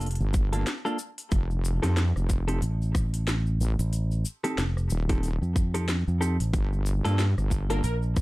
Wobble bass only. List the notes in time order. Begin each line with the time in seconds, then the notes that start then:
0.20 G1
1.32 F1
1.84 F2
2.16 F1
3.60 A1
4.91 D#1
6.53 G1
7.05 G2
7.38 G1